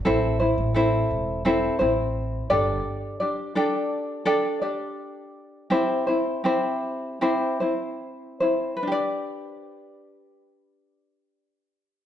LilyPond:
<<
  \new Staff \with { instrumentName = "Ukulele" } { \time 4/4 \key g \major \tempo 4 = 82 <c' e' a' c''>8 <c' e' c''>8 <c' e' a' c''>4 <c' e' a' c''>8 <c' e' c''>4 <d' g' a' d''>8~ | <d' g' a' d''>8 <d' g' d''>8 <d' g' a' d''>4 <d' g' a' d''>8 <d' g' d''>4. | <c' e' g' c''>8 <c' e' c''>8 <c' e' g' c''>4 <c' e' g' c''>8 <c' e' c''>4 <c' e' c''>8 | <d' g' b' d''>1 | }
  \new Staff \with { instrumentName = "Upright bass" } { \clef bass \time 4/4 \key g \major a,,8. a,,8. e,,4 a,,4 g,,8 | r1 | r1 | r1 | }
>>